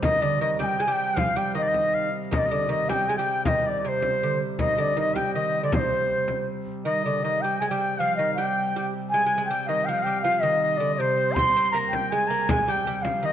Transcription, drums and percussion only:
0.03 frame drum medium
0.22 frame drum soft
0.60 frame drum medium
1.17 frame drum medium
1.37 frame drum soft
1.56 frame drum soft
1.74 frame drum medium
1.93 frame drum soft
2.32 frame drum medium
2.51 frame drum soft
2.89 frame drum medium
3.46 frame drum medium
3.65 frame drum soft
4.02 frame drum medium
4.59 frame drum medium
4.78 frame drum soft
5.16 frame drum medium
5.72 frame drum medium
5.92 frame drum soft
6.10 frame drum soft
6.28 frame drum medium
6.66 frame drum soft
11.36 frame drum medium
11.55 frame drum soft
11.93 frame drum medium
12.49 frame drum loud
12.67 frame drum soft
13.05 frame drum medium

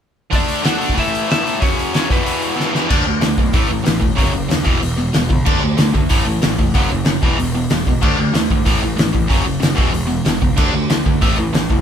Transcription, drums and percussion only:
0.33 kick medium
0.33 open hi-hat medium
0.48 open hi-hat medium
0.65 snare loud
0.65 open hi-hat medium
0.81 open hi-hat medium
0.90 kick medium
0.98 kick medium
0.98 open hi-hat medium
1.15 open hi-hat medium
1.31 snare loud
1.31 open hi-hat medium
1.47 open hi-hat medium
1.62 kick loud
1.62 open hi-hat medium
1.79 open hi-hat soft
1.94 snare loud
1.94 open hi-hat medium
2.10 kick loud
2.10 open hi-hat soft
2.26 open hi-hat medium
2.42 open hi-hat medium
2.60 snare medium
2.75 snare medium
2.90 kick loud
2.90 crash loud
3.21 snare loud
3.21 open hi-hat medium
3.38 kick medium
3.53 kick loud
3.53 open hi-hat medium
3.86 snare loud
3.86 open hi-hat medium
4.02 kick medium
4.18 kick loud
4.18 open hi-hat medium
4.51 snare loud
4.51 open hi-hat medium
4.67 kick medium
4.82 open hi-hat medium
5.14 snare loud
5.14 open hi-hat medium
5.31 kick medium
5.46 kick loud
5.46 crash medium
5.78 snare loud
5.78 open hi-hat medium
5.95 kick medium
6.09 kick loud
6.09 open hi-hat medium
6.42 snare loud
6.42 open hi-hat medium
6.59 kick medium
6.74 kick loud
6.74 open hi-hat medium
7.05 snare loud
7.05 open hi-hat medium
7.23 kick loud
7.39 open hi-hat medium
7.70 snare loud
7.70 open hi-hat medium
7.87 kick medium
8.02 kick loud
8.02 crash medium
8.35 snare loud
8.35 open hi-hat medium
8.50 kick medium
8.66 kick loud
8.66 open hi-hat medium
8.98 snare loud
8.98 open hi-hat medium
9.15 kick medium
9.30 kick loud
9.30 open hi-hat medium
9.62 snare loud
9.62 open hi-hat medium
9.78 kick loud
9.94 open hi-hat medium
10.25 snare loud
10.25 open hi-hat medium
10.42 kick medium
10.57 kick loud
10.57 crash medium
10.90 snare loud
10.90 open hi-hat medium
11.06 kick medium
11.21 kick loud
11.21 open hi-hat medium
11.54 snare loud
11.54 open hi-hat medium
11.70 kick medium

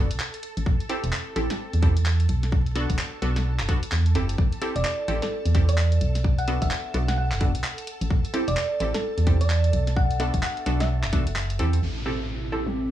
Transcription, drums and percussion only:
0.11 closed hi-hat medium
0.20 clap loud
0.34 closed hi-hat soft
0.43 closed hi-hat medium
0.57 closed hi-hat medium
0.66 kick loud
0.80 closed hi-hat soft
0.90 closed hi-hat medium
1.04 closed hi-hat medium
1.13 clap loud
1.36 closed hi-hat medium
1.50 snare medium
1.50 closed hi-hat medium
1.73 closed hi-hat soft
1.83 kick loud
1.83 closed hi-hat medium
1.97 closed hi-hat medium
2.06 clap loud
2.20 closed hi-hat soft
2.29 closed hi-hat medium
2.43 snare soft
2.43 closed hi-hat medium
2.52 kick loud
2.66 closed hi-hat soft
2.76 closed hi-hat medium
2.90 kick medium
2.90 closed hi-hat medium
2.99 clap loud
3.22 closed hi-hat medium
3.36 snare medium
3.36 closed hi-hat medium
3.59 clap medium
3.59 closed hi-hat soft
3.69 kick loud
3.69 closed hi-hat medium
3.83 closed hi-hat medium
3.92 clap loud
4.06 closed hi-hat soft
4.15 closed hi-hat medium
4.29 closed hi-hat medium
4.38 kick loud
4.52 closed hi-hat soft
4.62 closed hi-hat loud
4.76 closed hi-hat medium
4.85 clap loud
5.08 closed hi-hat medium
5.22 snare medium
5.22 closed hi-hat medium
5.45 closed hi-hat medium
5.55 kick loud
5.55 closed hi-hat loud
5.69 closed hi-hat medium
5.78 clap loud
5.92 closed hi-hat medium
6.01 closed hi-hat medium
6.15 snare soft
6.15 closed hi-hat medium
6.24 kick loud
6.38 closed hi-hat soft
6.48 closed hi-hat loud
6.62 kick medium
6.62 closed hi-hat medium
6.71 clap loud
6.94 closed hi-hat medium
7.08 snare medium
7.08 closed hi-hat medium
7.32 clap medium
7.32 closed hi-hat medium
7.41 kick medium
7.41 closed hi-hat loud
7.55 closed hi-hat medium
7.64 clap loud
7.78 closed hi-hat medium
7.87 closed hi-hat medium
8.01 closed hi-hat medium
8.10 kick loud
8.25 closed hi-hat soft
8.34 closed hi-hat loud
8.48 closed hi-hat medium
8.57 clap loud
8.80 closed hi-hat medium
8.94 snare medium
8.94 closed hi-hat medium
9.18 closed hi-hat medium
9.27 kick medium
9.27 closed hi-hat loud
9.41 closed hi-hat medium
9.50 clap loud
9.64 closed hi-hat medium
9.73 closed hi-hat medium
9.87 snare soft
9.87 closed hi-hat medium
9.96 kick loud
10.11 closed hi-hat soft
10.20 closed hi-hat loud
10.34 kick medium
10.34 closed hi-hat medium
10.43 clap loud
10.57 closed hi-hat soft
10.66 closed hi-hat medium
10.80 snare medium
10.80 closed hi-hat medium
11.04 clap medium
11.04 closed hi-hat medium
11.13 kick loud
11.13 closed hi-hat loud
11.27 closed hi-hat medium
11.36 clap loud
11.50 closed hi-hat medium
11.59 closed hi-hat loud
11.73 closed hi-hat medium
12.52 closed hi-hat medium
12.66 snare medium

